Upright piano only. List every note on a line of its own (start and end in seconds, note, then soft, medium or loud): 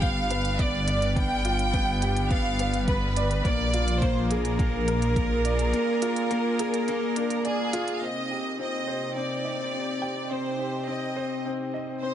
0.00 0.02 B3 loud
0.00 0.29 B3 medium
0.00 1.45 F4 medium
0.00 2.02 G4 medium
0.31 0.58 B4 medium
0.60 0.76 B3 medium
0.88 1.04 D5 medium
1.16 1.44 B3 medium
1.45 1.72 F4 medium
1.74 2.01 B3 loud
2.02 2.29 G4 medium
2.31 2.58 B3 loud
2.60 2.87 B4 medium
2.88 3.04 B3 medium
3.17 3.33 D5 medium
3.45 3.72 A#3 medium
3.74 4.01 F4 medium
4.02 4.29 A#3 loud
4.31 4.58 G#4 medium
4.60 4.87 A#3 loud
4.88 5.15 A#4 medium
5.17 5.33 A#3 medium
5.45 5.61 D5 medium
5.73 6.01 A#3 medium
6.02 6.29 F4 medium
6.31 6.58 A#3 loud
6.59 6.87 G#4 medium
6.88 7.15 A#3 loud
7.16 7.44 D4 medium
7.45 7.61 D5 medium
7.73 8.01 F4 loud
8.02 8.29 C4 medium
8.30 8.58 G4 medium
8.59 8.86 C4 medium
8.87 9.15 C5 medium
9.16 9.43 C4 medium
9.45 9.72 D#5 medium
9.73 9.90 C4 medium
10.02 10.18 G5 medium
10.31 10.58 C4 medium
10.59 10.86 G4 medium
10.88 11.15 C4 medium
11.16 11.44 C5 medium
11.45 11.72 C4 medium
11.74 12.01 D#5 medium
12.02 12.14 C4 medium